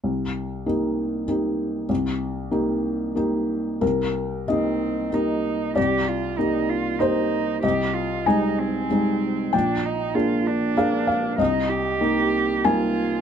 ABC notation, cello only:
X:1
M:3/4
L:1/8
Q:1/4=96
K:Cm
V:1 name="Cello"
z6 | z6 | z2 C2 E2 | G F E F E2 |
G F E C3 | D E F D3 | E G3 F2 |]